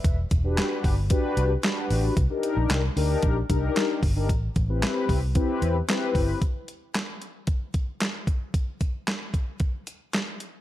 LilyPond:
<<
  \new Staff \with { instrumentName = "Analog polysynth" } { \time 4/4 \key a \dorian \tempo 4 = 113 <b' e''>16 r8 <d' fis' g' b'>4 r16 <d' fis' g' b'>8. r16 <d' fis' g' b'>4 | r16 <d' ees' g' bes'>4 r16 <d' ees' g' bes'>8. r16 <d' ees' g' bes'>4 r16 <d' ees' g' bes'>16 | r8. <c' e' g' b'>4 r16 <c' e' g' b'>8. r16 <c' e' g' b'>4 | r1 |
r1 | }
  \new Staff \with { instrumentName = "Fingered electric bass" } { \clef bass \time 4/4 \key a \dorian e,,8 e,,8. r16 g,,8. r16 c,8 r8 a,,8 | c,16 r8 bes,,16 c,8 d,8 bes,,8 c,8 r8 g,,8 | a,,8 a,,8. r16 c,8. r16 e,8 r8 g,,8 | r1 |
r1 | }
  \new DrumStaff \with { instrumentName = "Drums" } \drummode { \time 4/4 <hh bd>8 <hh bd>8 <hc hh sn>8 <hho bd>8 <hh bd>8 hh8 <hc hh sn>8 hho8 | <hh bd>8 hh8 <hc hh sn>8 hho8 <hh bd>8 <hh bd>8 <hc hh sn>8 <hho bd>8 | <hh bd>8 <hh bd>8 <hc hh sn>8 <hho bd>8 <hh bd>8 hh8 <hc hh sn>8 <hho bd>8 | <hh bd>8 hh8 <hc hh sn>8 hh8 <hh bd>8 <hh bd>8 <hc hh sn>8 <hh bd>8 |
<hh bd>8 <hh bd>8 <hc hh sn>8 <hh bd>8 <hh bd>8 hh8 <hc hh sn>8 hh8 | }
>>